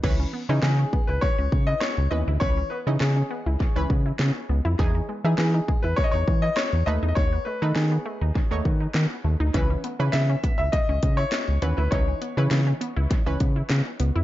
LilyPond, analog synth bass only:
\new Staff \with { instrumentName = "Analog synth bass" } { \clef bass \time 4/4 \key cis \minor \tempo 4 = 101 cis,8 r16 cis16 cis8 r16 cis,16 r16 cis,16 cis8 r16 cis,16 dis,16 d,16 | cis,8 r16 cis16 cis8 r16 cis,16 r16 cis,16 cis8 cis16 r16 cis,16 eis,16 | e,8 r16 e16 e8 r16 e,16 r16 e,16 e8 r16 e,16 dis,16 e,16 | dis,8 r16 dis16 dis8 r16 dis,16 r16 dis,16 dis8 dis16 r16 dis,16 d,16 |
cis,8 r16 cis16 cis8 r16 cis,16 r16 cis,16 cis8 r16 cis,16 dis,16 d,16 | cis,8 r16 cis16 cis8 r16 cis,16 r16 cis,16 cis8 cis16 r16 cis,16 eis,16 | }